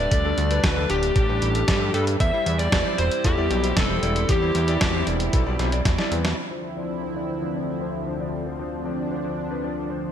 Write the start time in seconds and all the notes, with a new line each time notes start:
Already playing: G3 A3 D4 D5
0.11 D2 G3 D4 A4, kick, closed hi-hat
0.25 G3 D4 A4
0.38 D2, closed hi-hat
0.51 G3 D4 B4, closed hi-hat
0.64 D2 B4, kick, snare, closed hi-hat
0.77 G3 D4 A4
0.90 D1 G3 D4 G4 B4, closed hi-hat
1.03 closed hi-hat
1.16 A1 G3 D4 G4, kick, closed hi-hat
1.29 A1 G3 D4 B4
1.42 A1, closed hi-hat
1.55 G3 D4 A4, closed hi-hat
1.68 G2, kick, snare, closed hi-hat
1.81 G3 D4 A4
1.94 G2 G3 D4 A4 B4, closed hi-hat
2.07 closed hi-hat
2.20 E2 G3 C4 E4 C5 E5, kick, closed hi-hat
2.33 G3 E4 C5
2.46 E2, closed hi-hat
2.59 G3 E4 D5, closed hi-hat
2.72 E2, kick, snare, closed hi-hat
2.86 G3 E4 C5
2.98 E1 G3 E4 C5 D5, closed hi-hat
3.11 closed hi-hat
3.24 E2 G3 E4 G4 A4, kick, closed hi-hat
3.38 E2 G3 E4 D5
3.51 B1, closed hi-hat
3.64 G3 E4 C5, closed hi-hat
3.77 E1 A4, kick, snare, closed hi-hat
3.90 G3 E4 C5
4.03 E1 G3 E4 D5, closed hi-hat
4.16 closed hi-hat
4.29 E2 G3 E4 G4 C5, kick, closed hi-hat
4.42 G3 E4 C5
4.55 E2, closed hi-hat
4.68 G3 E4 D5, closed hi-hat
4.81 E2, kick, snare, closed hi-hat
4.94 G3 E4 C5
5.07 E1 G3 E4 D5, closed hi-hat
5.20 closed hi-hat
5.33 B1 G3 E4 A4, kick, closed hi-hat
5.46 B1 G3 E4 D5
5.59 B1 G3 E4 C5, snare, closed hi-hat
5.72 G3 E4 D5, closed hi-hat
5.85 E2, kick, snare, closed hi-hat
5.98 G3 E4 D5, snare
6.11 E2, closed hi-hat
6.25 G3 E4 E5, snare, closed hi-hat
6.38 D2 D3 F3 C4 D4 E4 C5
6.51 F3 D4 C5
6.77 F3 D4 D5
7.03 F3 D4 C5
7.16 F3 D4 D5
7.42 F3 D4 B4
7.55 F3 D4 D5
7.81 F3 D4 C5
8.07 F3 D4 C5
8.20 F3 D4 D5
8.46 F3 D4 C5
8.59 F3 D4 C5
8.85 F3 D4 D5
9.11 F3 D4 C5
9.24 F3 D4 D5
9.51 F3 D4 B4
9.64 F3 D4 D5
9.90 F3 D4 C5